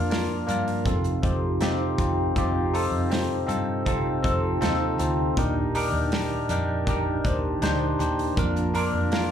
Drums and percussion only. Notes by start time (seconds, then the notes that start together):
0.11 snare, hi-hat pedal, open hi-hat
0.49 hi-hat pedal, open hi-hat
0.68 open hi-hat
0.85 kick, hi-hat pedal, open hi-hat
1.04 hi-hat pedal
1.23 kick, hi-hat pedal, open hi-hat
1.61 snare, hi-hat pedal, open hi-hat
1.98 kick, hi-hat pedal, open hi-hat
2.36 kick, hi-hat pedal, open hi-hat
2.74 hi-hat pedal, open hi-hat
3.11 snare, hi-hat pedal, open hi-hat
3.49 hi-hat pedal, open hi-hat
3.86 kick, hi-hat pedal, open hi-hat
4.24 kick, hi-hat pedal, open hi-hat
4.62 snare, hi-hat pedal, open hi-hat
4.99 hi-hat pedal, open hi-hat
5.37 kick, hi-hat pedal, open hi-hat
5.75 hi-hat pedal, open hi-hat
6.12 snare, hi-hat pedal, open hi-hat
6.49 hi-hat pedal, open hi-hat
6.87 kick, hi-hat pedal, open hi-hat
7.25 kick, hi-hat pedal, open hi-hat
7.62 snare, hi-hat pedal, open hi-hat
8.00 hi-hat pedal, open hi-hat
8.19 open hi-hat
8.37 kick, hi-hat pedal, open hi-hat
8.56 hi-hat pedal
8.74 hi-hat pedal, open hi-hat
9.12 snare, hi-hat pedal, open hi-hat